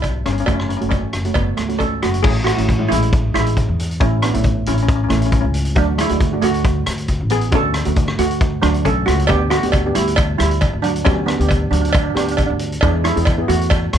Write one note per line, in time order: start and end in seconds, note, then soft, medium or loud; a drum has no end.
0.00 0.22 B1 medium
0.00 0.27 E4 medium
0.00 kick medium
0.00 closed hi-hat medium
0.00 cowbell medium
0.26 0.46 G1 medium
0.26 0.31 C#4 medium
0.26 cross-stick medium
0.26 closed hi-hat medium
0.33 0.39 C#4 medium
0.38 0.45 C#4 medium
0.38 closed hi-hat medium
0.46 0.79 F#1 medium
0.46 0.67 A3 medium
0.46 0.67 C#4 medium
0.46 0.67 F#4 medium
0.46 kick loud
0.46 closed hi-hat medium
0.46 cowbell medium
0.54 0.61 C#4 medium
0.59 0.68 C#4 medium
0.59 cross-stick medium
0.69 0.76 C#4 medium
0.69 closed hi-hat medium
0.77 1.07 A3 medium
0.77 0.85 C#4 medium
0.77 1.07 C#4 medium
0.81 1.02 F#1 medium
0.81 1.07 F#4 medium
0.81 closed hi-hat medium
0.89 1.36 C#4 medium
0.89 kick medium
0.89 closed hi-hat medium
0.89 cowbell medium
1.13 1.34 F#1 medium
1.13 cross-stick medium
1.13 closed hi-hat medium
1.25 1.51 A3 medium
1.25 1.52 C#4 medium
1.25 1.51 F#4 medium
1.25 closed hi-hat medium
1.34 1.46 F#1 medium
1.34 1.56 B3 medium
1.34 kick loud
1.34 closed hi-hat medium
1.34 cowbell medium
1.57 1.99 C#2 medium
1.57 1.98 A3 medium
1.57 cross-stick medium
1.57 closed hi-hat medium
1.69 2.01 A3 medium
1.69 2.02 C#4 medium
1.69 2.01 F#4 medium
1.69 closed hi-hat medium
1.78 2.00 C#4 medium
1.78 2.02 A4 loud
1.78 kick medium
1.78 closed hi-hat medium
1.78 cowbell medium
2.02 2.23 F#1 medium
2.02 2.13 A3 medium
2.02 2.12 F#4 medium
2.02 cross-stick medium
2.02 closed hi-hat medium
2.14 closed hi-hat medium
2.23 2.56 A1 medium
2.23 2.44 A3 medium
2.23 2.43 C#4 medium
2.23 2.44 C#4 medium
2.23 2.44 E4 medium
2.23 2.46 G#4 loud
2.23 kick loud
2.23 crash loud
2.44 2.86 A3 medium
2.44 2.90 F#4 loud
2.44 cross-stick loud
2.44 closed hi-hat medium
2.57 2.88 A1 medium
2.57 2.70 A3 medium
2.57 2.70 C#4 medium
2.57 2.70 E4 medium
2.57 closed hi-hat medium
2.69 kick medium
2.69 closed hi-hat medium
2.79 3.31 G#3 medium
2.79 3.31 C#4 medium
2.79 3.32 E4 medium
2.89 3.31 A1 loud
2.89 3.31 G#3 medium
2.89 3.33 E4 loud
2.89 closed hi-hat medium
3.02 closed hi-hat medium
3.13 kick loud
3.13 closed hi-hat medium
3.34 3.66 A1 medium
3.34 3.96 G#3 medium
3.34 4.01 E4 loud
3.34 cross-stick medium
3.34 closed hi-hat medium
3.46 closed hi-hat medium
3.57 kick medium
3.57 closed hi-hat medium
3.69 3.98 E2 medium
3.79 closed hi-hat medium
3.91 closed hi-hat medium
4.00 4.32 A1 loud
4.00 4.20 A3 medium
4.00 4.10 C#4 loud
4.00 4.20 C#4 medium
4.00 4.20 E4 medium
4.00 4.11 E4 medium
4.00 kick loud
4.00 closed hi-hat medium
4.22 4.68 B3 medium
4.22 4.63 D4 medium
4.22 cross-stick medium
4.22 closed hi-hat medium
4.34 4.64 A1 medium
4.34 4.80 A3 medium
4.34 4.80 C#4 medium
4.34 4.80 E4 medium
4.34 closed hi-hat medium
4.44 kick medium
4.44 closed hi-hat medium
4.66 5.08 A1 loud
4.66 4.73 C#4 medium
4.66 4.74 E4 medium
4.66 closed hi-hat medium
4.75 4.81 C#4 medium
4.75 closed hi-hat medium
4.83 4.87 C#4 medium
4.88 4.95 C#4 medium
4.88 kick loud
4.88 closed hi-hat medium
4.96 5.03 C#4 medium
5.04 5.08 C#4 medium
5.09 5.42 A1 loud
5.09 5.50 A3 medium
5.09 5.15 C#4 medium
5.09 5.50 C#4 medium
5.09 5.50 E4 medium
5.09 cross-stick medium
5.09 closed hi-hat medium
5.17 5.24 C#4 medium
5.22 closed hi-hat medium
5.26 5.32 C#4 medium
5.32 5.40 C#4 medium
5.32 kick medium
5.32 closed hi-hat medium
5.41 5.74 C#2 medium
5.41 5.48 C#4 medium
5.54 closed hi-hat medium
5.65 closed hi-hat medium
5.75 6.08 D2 loud
5.75 5.97 F#3 medium
5.75 5.96 A3 medium
5.75 5.96 D4 medium
5.75 5.98 D4 loud
5.75 5.96 F#4 medium
5.75 kick loud
5.75 closed hi-hat medium
5.98 6.39 G#3 medium
5.98 6.41 E4 loud
5.98 cross-stick medium
5.98 closed hi-hat loud
6.09 6.40 D2 medium
6.09 6.22 A3 medium
6.09 6.23 D4 medium
6.09 6.23 F#4 medium
6.09 closed hi-hat medium
6.20 kick medium
6.20 closed hi-hat medium
6.33 6.85 A3 medium
6.33 6.85 D4 medium
6.33 6.85 F#4 medium
6.42 6.83 D2 loud
6.42 7.26 A3 medium
6.42 7.34 F#4 loud
6.42 closed hi-hat loud
6.54 closed hi-hat medium
6.64 kick loud
6.64 closed hi-hat medium
6.86 7.18 D2 medium
6.86 cross-stick medium
6.86 closed hi-hat loud
6.98 closed hi-hat medium
7.08 kick medium
7.08 closed hi-hat medium
7.21 7.51 A1 medium
7.30 7.51 B3 medium
7.30 7.52 G#4 loud
7.30 closed hi-hat medium
7.41 closed hi-hat medium
7.51 7.84 D2 loud
7.51 7.72 A3 medium
7.51 8.15 C#4 medium
7.51 7.72 D4 medium
7.51 7.72 F#4 medium
7.51 8.22 A4 loud
7.51 kick loud
7.51 closed hi-hat medium
7.74 cross-stick medium
7.74 closed hi-hat medium
7.85 8.17 D2 medium
7.85 8.32 D3 medium
7.85 8.32 A3 medium
7.85 8.32 F#4 medium
7.85 closed hi-hat medium
7.96 kick loud
7.96 closed hi-hat medium
8.08 cross-stick medium
8.18 8.60 D2 medium
8.18 8.60 A3 medium
8.18 8.60 F#4 loud
8.18 closed hi-hat medium
8.31 closed hi-hat medium
8.41 kick loud
8.41 closed hi-hat medium
8.62 8.84 D2 medium
8.62 8.83 F#3 medium
8.62 9.03 A3 medium
8.62 9.03 D4 medium
8.62 8.85 D4 medium
8.62 9.03 F#4 medium
8.62 cross-stick medium
8.62 closed hi-hat medium
8.74 closed hi-hat medium
8.85 9.05 B1 medium
8.85 8.95 C#4 medium
8.85 8.95 A4 loud
8.85 kick medium
8.85 closed hi-hat medium
9.06 9.27 C#2 medium
9.06 9.27 A3 medium
9.06 9.29 F#4 loud
9.06 cross-stick medium
9.06 closed hi-hat medium
9.19 closed hi-hat medium
9.27 9.61 D2 loud
9.27 9.38 B3 medium
9.27 9.49 B3 medium
9.27 9.49 D4 medium
9.27 9.39 G4 loud
9.27 9.49 G4 medium
9.27 kick loud
9.27 closed hi-hat medium
9.27 cowbell loud
9.50 9.92 A3 medium
9.50 9.92 F#4 loud
9.50 cross-stick medium
9.50 closed hi-hat medium
9.63 9.94 D2 medium
9.63 9.76 B3 medium
9.63 9.76 D4 medium
9.63 9.76 G4 medium
9.63 closed hi-hat medium
9.72 kick medium
9.72 closed hi-hat medium
9.72 cowbell medium
9.86 10.38 B3 medium
9.86 10.38 D4 medium
9.86 10.38 G4 medium
9.95 10.37 D2 medium
9.95 10.36 G3 medium
9.95 10.37 E4 loud
9.95 closed hi-hat loud
10.07 closed hi-hat medium
10.16 kick loud
10.16 closed hi-hat medium
10.16 cowbell loud
10.38 10.71 D2 medium
10.38 10.80 G3 medium
10.38 10.84 E4 loud
10.38 cross-stick medium
10.38 closed hi-hat loud
10.51 closed hi-hat medium
10.61 kick medium
10.61 closed hi-hat medium
10.61 cowbell medium
10.73 11.04 D2 medium
10.82 11.04 F#3 medium
10.82 11.06 D4 medium
10.82 closed hi-hat medium
10.96 closed hi-hat medium
11.05 11.38 D2 loud
11.05 11.26 F#3 medium
11.05 11.26 B3 medium
11.05 11.28 C#4 loud
11.05 11.26 D4 medium
11.05 11.26 G4 medium
11.05 kick loud
11.05 closed hi-hat medium
11.05 cowbell medium
11.26 11.68 B3 medium
11.26 11.68 D4 medium
11.26 cross-stick medium
11.26 closed hi-hat medium
11.39 11.70 D2 medium
11.39 11.86 B3 medium
11.39 11.86 D4 medium
11.39 11.86 G4 medium
11.39 closed hi-hat medium
11.49 kick medium
11.49 closed hi-hat medium
11.49 cowbell medium
11.71 12.13 D2 loud
11.71 11.79 F#3 medium
11.71 11.79 D4 medium
11.71 closed hi-hat medium
11.81 11.88 D4 medium
11.81 closed hi-hat medium
11.90 11.95 D4 medium
11.90 cowbell loud
11.94 12.02 D4 medium
11.94 kick loud
11.94 closed hi-hat medium
12.04 12.09 D4 medium
12.10 12.16 D4 medium
12.15 12.47 D2 medium
12.15 12.55 B3 medium
12.15 12.56 D4 medium
12.15 12.24 D4 medium
12.15 12.56 G4 medium
12.15 cross-stick medium
12.15 closed hi-hat medium
12.25 12.30 D4 soft
12.25 closed hi-hat medium
12.31 12.36 D4 medium
12.37 12.45 D4 medium
12.37 kick medium
12.37 closed hi-hat medium
12.37 cowbell medium
12.46 12.80 D2 medium
12.46 12.53 D4 medium
12.59 closed hi-hat medium
12.72 closed hi-hat medium
12.81 13.14 E2 loud
12.81 13.04 G#3 medium
12.81 13.02 B3 medium
12.81 13.05 D4 loud
12.81 13.03 E4 medium
12.81 13.03 G#4 medium
12.81 kick loud
12.81 closed hi-hat medium
12.81 cowbell loud
13.04 13.46 G#3 medium
13.04 13.50 E4 loud
13.04 cross-stick medium
13.04 closed hi-hat medium
13.16 13.47 E2 medium
13.16 13.29 B3 medium
13.16 13.29 E4 medium
13.16 13.29 G#4 medium
13.16 closed hi-hat medium
13.25 kick loud
13.25 closed hi-hat medium
13.25 cowbell medium
13.38 13.91 B3 medium
13.38 13.91 E4 medium
13.38 13.91 G#4 medium
13.48 13.90 E2 loud
13.48 13.98 A3 medium
13.48 13.98 F#4 loud
13.48 closed hi-hat medium
13.61 closed hi-hat medium
13.70 kick loud
13.70 closed hi-hat medium
13.70 cowbell loud
13.93 13.98 E2 loud
13.93 cross-stick medium
13.93 closed hi-hat loud